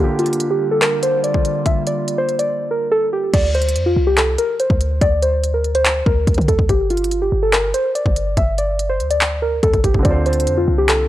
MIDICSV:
0, 0, Header, 1, 6, 480
1, 0, Start_track
1, 0, Key_signature, -1, "minor"
1, 0, Tempo, 419580
1, 1897, Time_signature, 4, 2, 24, 8
1, 12679, End_track
2, 0, Start_track
2, 0, Title_t, "Synth keys"
2, 0, Program_c, 0, 88
2, 0, Note_on_c, 0, 67, 83
2, 170, Note_off_c, 0, 67, 0
2, 218, Note_on_c, 0, 65, 80
2, 555, Note_off_c, 0, 65, 0
2, 578, Note_on_c, 0, 67, 73
2, 770, Note_off_c, 0, 67, 0
2, 816, Note_on_c, 0, 69, 73
2, 912, Note_off_c, 0, 69, 0
2, 935, Note_on_c, 0, 70, 91
2, 1128, Note_off_c, 0, 70, 0
2, 1176, Note_on_c, 0, 72, 91
2, 1369, Note_off_c, 0, 72, 0
2, 1416, Note_on_c, 0, 74, 75
2, 1867, Note_off_c, 0, 74, 0
2, 1899, Note_on_c, 0, 76, 81
2, 2090, Note_off_c, 0, 76, 0
2, 2140, Note_on_c, 0, 74, 71
2, 2476, Note_off_c, 0, 74, 0
2, 2496, Note_on_c, 0, 72, 78
2, 2688, Note_off_c, 0, 72, 0
2, 2734, Note_on_c, 0, 74, 69
2, 3074, Note_off_c, 0, 74, 0
2, 3099, Note_on_c, 0, 70, 71
2, 3290, Note_off_c, 0, 70, 0
2, 3335, Note_on_c, 0, 69, 86
2, 3528, Note_off_c, 0, 69, 0
2, 3579, Note_on_c, 0, 67, 78
2, 3770, Note_off_c, 0, 67, 0
2, 3816, Note_on_c, 0, 74, 81
2, 4008, Note_off_c, 0, 74, 0
2, 4058, Note_on_c, 0, 72, 88
2, 4396, Note_off_c, 0, 72, 0
2, 4416, Note_on_c, 0, 65, 70
2, 4608, Note_off_c, 0, 65, 0
2, 4655, Note_on_c, 0, 67, 88
2, 4752, Note_off_c, 0, 67, 0
2, 4776, Note_on_c, 0, 69, 87
2, 4969, Note_off_c, 0, 69, 0
2, 5016, Note_on_c, 0, 70, 79
2, 5208, Note_off_c, 0, 70, 0
2, 5260, Note_on_c, 0, 72, 79
2, 5709, Note_off_c, 0, 72, 0
2, 5737, Note_on_c, 0, 74, 87
2, 5929, Note_off_c, 0, 74, 0
2, 5976, Note_on_c, 0, 72, 80
2, 6314, Note_off_c, 0, 72, 0
2, 6337, Note_on_c, 0, 70, 74
2, 6529, Note_off_c, 0, 70, 0
2, 6578, Note_on_c, 0, 72, 82
2, 6915, Note_off_c, 0, 72, 0
2, 6937, Note_on_c, 0, 70, 78
2, 7388, Note_off_c, 0, 70, 0
2, 7417, Note_on_c, 0, 69, 81
2, 7609, Note_off_c, 0, 69, 0
2, 7660, Note_on_c, 0, 67, 87
2, 7851, Note_off_c, 0, 67, 0
2, 7897, Note_on_c, 0, 65, 82
2, 8235, Note_off_c, 0, 65, 0
2, 8257, Note_on_c, 0, 67, 76
2, 8449, Note_off_c, 0, 67, 0
2, 8496, Note_on_c, 0, 69, 74
2, 8592, Note_off_c, 0, 69, 0
2, 8613, Note_on_c, 0, 70, 95
2, 8807, Note_off_c, 0, 70, 0
2, 8855, Note_on_c, 0, 72, 92
2, 9048, Note_off_c, 0, 72, 0
2, 9095, Note_on_c, 0, 74, 78
2, 9547, Note_off_c, 0, 74, 0
2, 9580, Note_on_c, 0, 76, 85
2, 9771, Note_off_c, 0, 76, 0
2, 9820, Note_on_c, 0, 74, 74
2, 10156, Note_off_c, 0, 74, 0
2, 10175, Note_on_c, 0, 72, 80
2, 10368, Note_off_c, 0, 72, 0
2, 10416, Note_on_c, 0, 74, 71
2, 10754, Note_off_c, 0, 74, 0
2, 10778, Note_on_c, 0, 70, 73
2, 10970, Note_off_c, 0, 70, 0
2, 11016, Note_on_c, 0, 69, 88
2, 11208, Note_off_c, 0, 69, 0
2, 11257, Note_on_c, 0, 67, 81
2, 11449, Note_off_c, 0, 67, 0
2, 11496, Note_on_c, 0, 74, 82
2, 11688, Note_off_c, 0, 74, 0
2, 11739, Note_on_c, 0, 72, 89
2, 12076, Note_off_c, 0, 72, 0
2, 12097, Note_on_c, 0, 65, 70
2, 12289, Note_off_c, 0, 65, 0
2, 12334, Note_on_c, 0, 67, 86
2, 12431, Note_off_c, 0, 67, 0
2, 12455, Note_on_c, 0, 69, 89
2, 12648, Note_off_c, 0, 69, 0
2, 12679, End_track
3, 0, Start_track
3, 0, Title_t, "Grand piano"
3, 0, Program_c, 1, 0
3, 0, Note_on_c, 1, 50, 72
3, 0, Note_on_c, 1, 58, 60
3, 0, Note_on_c, 1, 65, 56
3, 43, Note_on_c, 1, 67, 78
3, 218, Control_c, 1, 64, 127
3, 3738, Note_off_c, 1, 50, 0
3, 3760, Note_off_c, 1, 58, 0
3, 3782, Note_off_c, 1, 65, 0
3, 3804, Note_off_c, 1, 67, 0
3, 3832, Control_c, 1, 64, 0
3, 11429, Note_on_c, 1, 50, 72
3, 11472, Note_on_c, 1, 60, 70
3, 11516, Note_on_c, 1, 65, 62
3, 11560, Note_on_c, 1, 72, 70
3, 11710, Control_c, 1, 64, 127
3, 12679, Note_off_c, 1, 50, 0
3, 12679, Note_off_c, 1, 60, 0
3, 12679, Note_off_c, 1, 65, 0
3, 12679, Note_off_c, 1, 72, 0
3, 12679, End_track
4, 0, Start_track
4, 0, Title_t, "Ambient pad"
4, 0, Program_c, 2, 92
4, 0, Note_on_c, 2, 50, 81
4, 0, Note_on_c, 2, 55, 75
4, 0, Note_on_c, 2, 58, 74
4, 0, Note_on_c, 2, 65, 94
4, 3778, Note_off_c, 2, 50, 0
4, 3778, Note_off_c, 2, 55, 0
4, 3778, Note_off_c, 2, 58, 0
4, 3778, Note_off_c, 2, 65, 0
4, 12679, End_track
5, 0, Start_track
5, 0, Title_t, "808-style bass"
5, 0, Program_c, 3, 38
5, 3816, Note_on_c, 3, 38, 104
5, 4295, Note_on_c, 3, 41, 98
5, 4313, Note_off_c, 3, 38, 0
5, 4524, Note_off_c, 3, 41, 0
5, 4535, Note_on_c, 3, 36, 100
5, 4996, Note_off_c, 3, 36, 0
5, 5377, Note_on_c, 3, 38, 104
5, 5722, Note_off_c, 3, 38, 0
5, 5736, Note_on_c, 3, 38, 112
5, 6890, Note_off_c, 3, 38, 0
5, 6936, Note_on_c, 3, 38, 105
5, 7166, Note_off_c, 3, 38, 0
5, 7176, Note_on_c, 3, 38, 109
5, 7291, Note_off_c, 3, 38, 0
5, 7297, Note_on_c, 3, 50, 105
5, 7409, Note_off_c, 3, 50, 0
5, 7416, Note_on_c, 3, 38, 102
5, 7529, Note_off_c, 3, 38, 0
5, 7536, Note_on_c, 3, 38, 100
5, 7651, Note_off_c, 3, 38, 0
5, 7656, Note_on_c, 3, 31, 109
5, 8347, Note_off_c, 3, 31, 0
5, 8376, Note_on_c, 3, 31, 101
5, 8837, Note_off_c, 3, 31, 0
5, 9217, Note_on_c, 3, 31, 102
5, 9562, Note_off_c, 3, 31, 0
5, 9576, Note_on_c, 3, 31, 107
5, 10297, Note_on_c, 3, 38, 98
5, 10314, Note_off_c, 3, 31, 0
5, 10980, Note_off_c, 3, 38, 0
5, 11017, Note_on_c, 3, 38, 110
5, 11132, Note_off_c, 3, 38, 0
5, 11138, Note_on_c, 3, 31, 101
5, 11249, Note_off_c, 3, 31, 0
5, 11256, Note_on_c, 3, 31, 104
5, 11369, Note_off_c, 3, 31, 0
5, 11376, Note_on_c, 3, 31, 98
5, 11491, Note_off_c, 3, 31, 0
5, 11496, Note_on_c, 3, 38, 105
5, 11977, Note_on_c, 3, 41, 99
5, 11994, Note_off_c, 3, 38, 0
5, 12205, Note_off_c, 3, 41, 0
5, 12215, Note_on_c, 3, 36, 105
5, 12677, Note_off_c, 3, 36, 0
5, 12679, End_track
6, 0, Start_track
6, 0, Title_t, "Drums"
6, 217, Note_on_c, 9, 42, 46
6, 296, Note_off_c, 9, 42, 0
6, 296, Note_on_c, 9, 42, 61
6, 376, Note_off_c, 9, 42, 0
6, 376, Note_on_c, 9, 42, 79
6, 458, Note_off_c, 9, 42, 0
6, 458, Note_on_c, 9, 42, 79
6, 573, Note_off_c, 9, 42, 0
6, 937, Note_on_c, 9, 39, 117
6, 940, Note_on_c, 9, 42, 80
6, 1051, Note_off_c, 9, 39, 0
6, 1055, Note_off_c, 9, 42, 0
6, 1175, Note_on_c, 9, 42, 88
6, 1290, Note_off_c, 9, 42, 0
6, 1417, Note_on_c, 9, 42, 59
6, 1532, Note_off_c, 9, 42, 0
6, 1537, Note_on_c, 9, 36, 87
6, 1651, Note_off_c, 9, 36, 0
6, 1658, Note_on_c, 9, 42, 75
6, 1772, Note_off_c, 9, 42, 0
6, 1896, Note_on_c, 9, 36, 110
6, 1896, Note_on_c, 9, 42, 71
6, 2010, Note_off_c, 9, 36, 0
6, 2010, Note_off_c, 9, 42, 0
6, 2136, Note_on_c, 9, 42, 70
6, 2250, Note_off_c, 9, 42, 0
6, 2378, Note_on_c, 9, 42, 77
6, 2492, Note_off_c, 9, 42, 0
6, 2616, Note_on_c, 9, 42, 40
6, 2730, Note_off_c, 9, 42, 0
6, 2736, Note_on_c, 9, 42, 66
6, 2851, Note_off_c, 9, 42, 0
6, 3816, Note_on_c, 9, 36, 115
6, 3816, Note_on_c, 9, 42, 76
6, 3816, Note_on_c, 9, 49, 91
6, 3930, Note_off_c, 9, 36, 0
6, 3931, Note_off_c, 9, 42, 0
6, 3931, Note_off_c, 9, 49, 0
6, 4056, Note_on_c, 9, 42, 47
6, 4137, Note_off_c, 9, 42, 0
6, 4137, Note_on_c, 9, 42, 64
6, 4216, Note_off_c, 9, 42, 0
6, 4216, Note_on_c, 9, 42, 81
6, 4298, Note_off_c, 9, 42, 0
6, 4298, Note_on_c, 9, 42, 82
6, 4412, Note_off_c, 9, 42, 0
6, 4776, Note_on_c, 9, 39, 121
6, 4780, Note_on_c, 9, 42, 77
6, 4891, Note_off_c, 9, 39, 0
6, 4894, Note_off_c, 9, 42, 0
6, 5015, Note_on_c, 9, 42, 88
6, 5130, Note_off_c, 9, 42, 0
6, 5258, Note_on_c, 9, 42, 63
6, 5372, Note_off_c, 9, 42, 0
6, 5377, Note_on_c, 9, 36, 89
6, 5491, Note_off_c, 9, 36, 0
6, 5499, Note_on_c, 9, 42, 76
6, 5613, Note_off_c, 9, 42, 0
6, 5736, Note_on_c, 9, 36, 112
6, 5737, Note_on_c, 9, 42, 77
6, 5851, Note_off_c, 9, 36, 0
6, 5851, Note_off_c, 9, 42, 0
6, 5977, Note_on_c, 9, 42, 77
6, 6091, Note_off_c, 9, 42, 0
6, 6218, Note_on_c, 9, 42, 79
6, 6333, Note_off_c, 9, 42, 0
6, 6456, Note_on_c, 9, 42, 40
6, 6571, Note_off_c, 9, 42, 0
6, 6576, Note_on_c, 9, 42, 65
6, 6691, Note_off_c, 9, 42, 0
6, 6697, Note_on_c, 9, 39, 119
6, 6700, Note_on_c, 9, 42, 81
6, 6811, Note_off_c, 9, 39, 0
6, 6815, Note_off_c, 9, 42, 0
6, 6936, Note_on_c, 9, 36, 101
6, 7050, Note_off_c, 9, 36, 0
6, 7176, Note_on_c, 9, 36, 86
6, 7177, Note_on_c, 9, 42, 63
6, 7257, Note_off_c, 9, 42, 0
6, 7257, Note_on_c, 9, 42, 49
6, 7291, Note_off_c, 9, 36, 0
6, 7297, Note_on_c, 9, 36, 90
6, 7337, Note_off_c, 9, 42, 0
6, 7337, Note_on_c, 9, 42, 36
6, 7411, Note_off_c, 9, 36, 0
6, 7416, Note_on_c, 9, 36, 90
6, 7418, Note_off_c, 9, 42, 0
6, 7418, Note_on_c, 9, 42, 82
6, 7530, Note_off_c, 9, 36, 0
6, 7533, Note_off_c, 9, 42, 0
6, 7536, Note_on_c, 9, 36, 95
6, 7650, Note_off_c, 9, 36, 0
6, 7656, Note_on_c, 9, 36, 113
6, 7656, Note_on_c, 9, 42, 77
6, 7770, Note_off_c, 9, 36, 0
6, 7770, Note_off_c, 9, 42, 0
6, 7896, Note_on_c, 9, 42, 45
6, 7976, Note_off_c, 9, 42, 0
6, 7976, Note_on_c, 9, 42, 61
6, 8057, Note_off_c, 9, 42, 0
6, 8057, Note_on_c, 9, 42, 81
6, 8138, Note_off_c, 9, 42, 0
6, 8138, Note_on_c, 9, 42, 78
6, 8253, Note_off_c, 9, 42, 0
6, 8617, Note_on_c, 9, 39, 120
6, 8620, Note_on_c, 9, 42, 80
6, 8731, Note_off_c, 9, 39, 0
6, 8735, Note_off_c, 9, 42, 0
6, 8856, Note_on_c, 9, 42, 90
6, 8970, Note_off_c, 9, 42, 0
6, 9098, Note_on_c, 9, 42, 63
6, 9213, Note_off_c, 9, 42, 0
6, 9217, Note_on_c, 9, 36, 93
6, 9331, Note_off_c, 9, 36, 0
6, 9338, Note_on_c, 9, 42, 76
6, 9452, Note_off_c, 9, 42, 0
6, 9576, Note_on_c, 9, 36, 113
6, 9576, Note_on_c, 9, 42, 75
6, 9691, Note_off_c, 9, 36, 0
6, 9691, Note_off_c, 9, 42, 0
6, 9817, Note_on_c, 9, 42, 77
6, 9931, Note_off_c, 9, 42, 0
6, 10059, Note_on_c, 9, 42, 79
6, 10173, Note_off_c, 9, 42, 0
6, 10297, Note_on_c, 9, 42, 40
6, 10411, Note_off_c, 9, 42, 0
6, 10417, Note_on_c, 9, 42, 66
6, 10531, Note_off_c, 9, 42, 0
6, 10537, Note_on_c, 9, 39, 120
6, 10541, Note_on_c, 9, 42, 79
6, 10652, Note_off_c, 9, 39, 0
6, 10655, Note_off_c, 9, 42, 0
6, 11016, Note_on_c, 9, 36, 88
6, 11017, Note_on_c, 9, 42, 63
6, 11131, Note_off_c, 9, 36, 0
6, 11131, Note_off_c, 9, 42, 0
6, 11137, Note_on_c, 9, 36, 89
6, 11137, Note_on_c, 9, 42, 37
6, 11251, Note_off_c, 9, 42, 0
6, 11252, Note_off_c, 9, 36, 0
6, 11256, Note_on_c, 9, 36, 88
6, 11258, Note_on_c, 9, 42, 82
6, 11370, Note_off_c, 9, 36, 0
6, 11372, Note_off_c, 9, 42, 0
6, 11376, Note_on_c, 9, 36, 95
6, 11490, Note_off_c, 9, 36, 0
6, 11496, Note_on_c, 9, 36, 109
6, 11496, Note_on_c, 9, 42, 75
6, 11610, Note_off_c, 9, 42, 0
6, 11611, Note_off_c, 9, 36, 0
6, 11736, Note_on_c, 9, 42, 47
6, 11817, Note_off_c, 9, 42, 0
6, 11817, Note_on_c, 9, 42, 62
6, 11896, Note_off_c, 9, 42, 0
6, 11896, Note_on_c, 9, 42, 81
6, 11978, Note_off_c, 9, 42, 0
6, 11978, Note_on_c, 9, 42, 79
6, 12092, Note_off_c, 9, 42, 0
6, 12456, Note_on_c, 9, 39, 117
6, 12460, Note_on_c, 9, 42, 81
6, 12571, Note_off_c, 9, 39, 0
6, 12575, Note_off_c, 9, 42, 0
6, 12679, End_track
0, 0, End_of_file